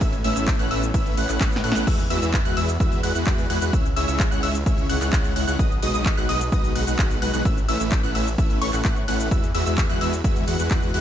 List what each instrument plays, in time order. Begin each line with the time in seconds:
Already playing: analog synth pad B3
0.01 analog synth pad A3 C#4, supersaw synth A3 C#4 E4 B4 E5, synth pluck E6, kick, closed hi-hat, ride, shaker
0.13 closed hi-hat, shaker
0.24 detuned saw bass A1, supersaw synth A3 C#4 E4 B4 E5, synth pluck E6, open hi-hat
0.36 detuned saw bass A1, supersaw synth A3 C#4 E4 B4 E5, synth pluck E6, closed hi-hat, shaker
0.48 kick, clap, closed hi-hat, ride, shaker
0.59 detuned saw bass A1, supersaw synth A3 C#4 E4 B4 F#5, synth pluck F#6, closed hi-hat, shaker
0.71 detuned saw bass A1, supersaw synth A3 C#4 E4 B4 E5, synth pluck E6, open hi-hat
0.83 closed hi-hat, shaker
0.94 supersaw synth A3 C#4 E4 B4 E5, synth pluck E6, kick, closed hi-hat, ride, shaker
1.06 closed hi-hat, shaker
1.17 detuned saw bass A1, supersaw synth A3 C#4 E4 B4 F#5, synth pluck F#6, open hi-hat
1.29 detuned saw bass A1, supersaw synth A3 C#4 E4 B4 F#5, synth pluck F#6, clap, closed hi-hat, shaker
1.41 detuned saw bass A1, supersaw synth A3 C#4 E4 B4 F#5, synth pluck F#6, kick, snare, clap, closed hi-hat, ride, shaker
1.52 snare, closed hi-hat, shaker
1.64 detuned saw bass A2, supersaw synth A3 C#4 E4 B4 F#5, synth pluck F#6, open hi-hat
1.72 detuned saw bass A1, supersaw synth A3 C#4 E4 B4 F#5, synth pluck F#6, snare, closed hi-hat
1.76 shaker
1.87 detuned saw bass E2, supersaw synth G#3 E4 F#4 B4 E5, synth pluck E6, kick, closed hi-hat, crash, ride, shaker
1.99 shaker
2.10 detuned saw bass E2, supersaw synth G#3 E4 F#4 B4 E5, synth pluck E6, open hi-hat, ride
2.22 detuned saw bass E2, supersaw synth G#3 E4 F#4 B4 E5, synth pluck E6, closed hi-hat, shaker
2.34 kick, clap, closed hi-hat, ride, shaker
2.45 detuned saw bass E2, supersaw synth G#3 E4 F#4 B4 F#5, synth pluck F#6, closed hi-hat, shaker
2.57 detuned saw bass E2, supersaw synth G#3 E4 F#4 B4 E5, synth pluck E6, open hi-hat, ride
2.69 closed hi-hat, shaker
2.80 detuned saw bass E2, supersaw synth G#3 E4 F#4 B4 E5, synth pluck E6, kick, closed hi-hat, ride, shaker
2.92 closed hi-hat, shaker
3.03 detuned saw bass E2, supersaw synth G#3 E4 F#4 B4 F#5, synth pluck F#6, open hi-hat, ride
3.15 detuned saw bass E2, supersaw synth G#3 E4 F#4 B4 F#5, synth pluck F#6, closed hi-hat, shaker
3.27 detuned saw bass E2, supersaw synth G#3 E4 F#4 B4 F#5, synth pluck F#6, kick, clap, closed hi-hat, ride, shaker
3.38 closed hi-hat, shaker
3.50 detuned saw bass E2, supersaw synth G#3 E4 F#4 B4 F#5, synth pluck F#6, open hi-hat, ride
3.62 detuned saw bass E2, supersaw synth G#3 E4 F#4 B4 F#5, synth pluck F#6, closed hi-hat, shaker
3.73 supersaw synth G#3 C#4 E4 C#5 E5, synth pluck E6, kick, closed hi-hat, ride, shaker
3.85 shaker
3.96 detuned saw bass C#2, supersaw synth G#3 C#4 E4 C#5 E5, synth pluck E6, open hi-hat, ride
4.08 detuned saw bass C#2, supersaw synth G#3 C#4 E4 C#5 E5, synth pluck E6, closed hi-hat, shaker
4.20 kick, clap, closed hi-hat, ride, shaker
4.31 detuned saw bass C#2, supersaw synth G#3 C#4 E4 C#5 F#5, synth pluck F#6, closed hi-hat, shaker
4.43 detuned saw bass C#2, supersaw synth G#3 C#4 E4 C#5 E5, synth pluck E6, open hi-hat, ride
4.55 closed hi-hat, shaker
4.66 detuned saw bass C#2, supersaw synth G#3 C#4 E4 C#5 E5, synth pluck E6, kick, closed hi-hat, ride, shaker
4.78 closed hi-hat, shaker
4.89 detuned saw bass C#2, supersaw synth G#3 C#4 E4 C#5 F#5, synth pluck F#6, open hi-hat, ride
5.01 detuned saw bass C#2, supersaw synth G#3 C#4 E4 C#5 F#5, synth pluck F#6, clap, closed hi-hat, shaker
5.13 supersaw synth G#3 C#4 E4 C#5 F#5, synth pluck F#6, kick, clap, closed hi-hat, ride, shaker
5.24 closed hi-hat, shaker
5.36 detuned saw bass C#2, supersaw synth G#3 C#4 E4 C#5 F#5, synth pluck F#6, open hi-hat, ride
5.48 detuned saw bass C#2, supersaw synth G#3 C#4 E4 C#5 F#5, synth pluck F#6, closed hi-hat, shaker
5.59 detuned saw bass B1, supersaw synth G#3 D#4 F#4 B4 D#5, synth pluck D#6, kick, closed hi-hat, ride, shaker
5.71 shaker
5.82 detuned saw bass B1, supersaw synth G#3 D#4 F#4 B4 D#5, synth pluck D#6, open hi-hat, ride
5.94 detuned saw bass B1, supersaw synth G#3 D#4 F#4 B4 D#5, synth pluck D#6, closed hi-hat, shaker
6.06 kick, clap, closed hi-hat, ride, shaker
6.17 detuned saw bass B1, supersaw synth G#3 D#4 F#4 B4 F#5, synth pluck F#6, closed hi-hat, shaker
6.29 detuned saw bass B1, supersaw synth G#3 D#4 F#4 B4 D#5, synth pluck D#6, open hi-hat, ride
6.41 closed hi-hat, shaker
6.52 detuned saw bass B1, supersaw synth G#3 D#4 F#4 B4 D#5, synth pluck D#6, kick, closed hi-hat, ride, shaker
6.64 closed hi-hat, shaker
6.75 detuned saw bass B1, supersaw synth G#3 D#4 F#4 B4 F#5, synth pluck F#6, open hi-hat, ride
6.87 detuned saw bass B1, supersaw synth G#3 D#4 F#4 B4 F#5, synth pluck F#6, closed hi-hat, shaker
6.99 supersaw synth G#3 D#4 F#4 B4 F#5, synth pluck F#6, kick, clap, closed hi-hat, ride, shaker
7.10 closed hi-hat, shaker
7.22 detuned saw bass B1, supersaw synth G#3 D#4 F#4 B4 F#5, synth pluck F#6, open hi-hat, ride
7.34 detuned saw bass B1, supersaw synth G#3 D#4 F#4 B4 F#5, synth pluck F#6, closed hi-hat, shaker
7.45 supersaw synth A3 C#4 E4 B4 E5, synth pluck E6, kick, closed hi-hat, ride, shaker
7.57 shaker
7.68 detuned saw bass A1, supersaw synth A3 C#4 E4 B4 E5, synth pluck E6, open hi-hat, ride
7.80 detuned saw bass A1, supersaw synth A3 C#4 E4 B4 E5, synth pluck E6, closed hi-hat, shaker
7.92 kick, clap, closed hi-hat, ride, shaker
8.03 detuned saw bass A1, supersaw synth A3 C#4 E4 B4 F#5, synth pluck F#6, closed hi-hat, shaker
8.15 detuned saw bass A1, supersaw synth A3 C#4 E4 B4 E5, synth pluck E6, open hi-hat, ride
8.27 closed hi-hat, shaker
8.38 supersaw synth A3 C#4 E4 B4 E5, synth pluck E6, kick, closed hi-hat, ride, shaker
8.50 closed hi-hat, shaker
8.61 detuned saw bass A1, supersaw synth A3 C#4 E4 B4 C#5, synth pluck C#6, open hi-hat, ride
8.73 detuned saw bass A1, supersaw synth A3 C#4 E4 B4 F#5, synth pluck F#6, clap, closed hi-hat, shaker
8.85 detuned saw bass A2, supersaw synth A3 C#4 E4 B4 F#5, synth pluck F#6, kick, clap, closed hi-hat, ride, shaker
8.96 closed hi-hat, shaker
9.08 detuned saw bass A1, supersaw synth A3 C#4 E4 B4 F#5, synth pluck F#6, open hi-hat, ride
9.20 closed hi-hat, shaker
9.31 detuned saw bass E2, supersaw synth G#3 E4 F#4 B4 E5, synth pluck E6, kick, closed hi-hat, ride, shaker
9.44 shaker
9.54 detuned saw bass E2, supersaw synth G#3 E4 F#4 B4 E5, synth pluck E6, open hi-hat, ride
9.66 detuned saw bass E2, supersaw synth G#3 E4 F#4 B4 E5, synth pluck E6, closed hi-hat, shaker
9.78 kick, clap, closed hi-hat, ride, shaker
9.89 detuned saw bass E2, supersaw synth G#3 E4 F#4 B4 F#5, synth pluck F#6, closed hi-hat, shaker
10.01 detuned saw bass E2, supersaw synth G#3 E4 F#4 B4 E5, synth pluck E6, open hi-hat, ride
10.13 closed hi-hat, shaker
10.24 supersaw synth G#3 E4 F#4 B4 E5, synth pluck E6, kick, closed hi-hat, ride, shaker
10.36 closed hi-hat, shaker
10.48 detuned saw bass E2, supersaw synth G#3 E4 F#4 B4 F#5, synth pluck F#6, open hi-hat, ride
10.59 detuned saw bass E2, supersaw synth G#3 E4 F#4 B4 F#5, synth pluck F#6, closed hi-hat, shaker
10.71 detuned saw bass E2, supersaw synth G#3 E4 F#4 B4 F#5, synth pluck F#6, kick, clap, closed hi-hat, ride, shaker
10.82 closed hi-hat, shaker
10.94 detuned saw bass E2, supersaw synth G#3 E4 F#4 B4 F#5, synth pluck F#6, open hi-hat, ride